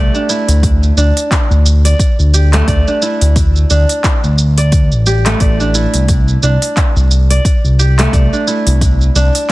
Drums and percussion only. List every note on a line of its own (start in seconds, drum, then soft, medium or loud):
0.15 shaker soft
0.29 shaker medium
0.49 open hi-hat medium
0.49 shaker soft
0.63 kick loud
0.63 open hi-hat soft
0.63 shaker soft
0.83 shaker soft
0.98 shaker medium
1.17 open hi-hat medium
1.17 shaker soft
1.31 kick loud
1.31 clap medium
1.31 open hi-hat soft
1.31 shaker soft
1.51 shaker soft
1.66 shaker medium
1.85 open hi-hat soft
1.85 shaker soft
1.99 kick loud
1.99 open hi-hat soft
1.99 shaker soft
2.19 shaker soft
2.34 shaker medium
2.53 clap medium
2.53 open hi-hat medium
2.53 shaker soft
2.68 kick loud
2.68 open hi-hat soft
2.68 shaker soft
2.88 shaker soft
3.02 shaker medium
3.21 open hi-hat medium
3.21 shaker soft
3.36 kick loud
3.36 open hi-hat soft
3.36 shaker soft
3.56 shaker soft
3.70 shaker medium
3.89 open hi-hat medium
3.89 shaker soft
4.04 kick loud
4.04 clap medium
4.04 open hi-hat soft
4.04 shaker soft
4.24 shaker soft
4.38 shaker medium
4.58 open hi-hat medium
4.58 shaker soft
4.72 kick loud
4.72 open hi-hat soft
4.72 shaker soft
4.92 shaker soft
5.06 shaker medium
5.26 clap medium
5.26 open hi-hat medium
5.26 shaker soft
5.40 kick loud
5.40 open hi-hat soft
5.40 shaker soft
5.60 shaker soft
5.75 shaker medium
5.94 open hi-hat soft
5.94 shaker soft
6.08 kick loud
6.08 open hi-hat soft
6.08 shaker soft
6.28 shaker soft
6.43 shaker medium
6.62 open hi-hat medium
6.62 shaker soft
6.77 kick loud
6.77 clap medium
6.77 open hi-hat soft
6.77 shaker soft
6.97 shaker soft
7.11 shaker medium
7.31 open hi-hat medium
7.31 shaker soft
7.45 kick loud
7.45 open hi-hat soft
7.45 shaker soft
7.65 shaker soft
7.80 shaker medium
7.99 clap medium
7.99 open hi-hat medium
7.99 shaker soft
8.13 kick loud
8.13 open hi-hat soft
8.13 shaker soft
8.33 shaker soft
8.48 shaker medium
8.67 open hi-hat medium
8.67 shaker soft
8.81 kick loud
8.81 open hi-hat soft
8.81 shaker soft
9.01 shaker soft
9.16 shaker medium
9.35 open hi-hat medium
9.35 shaker soft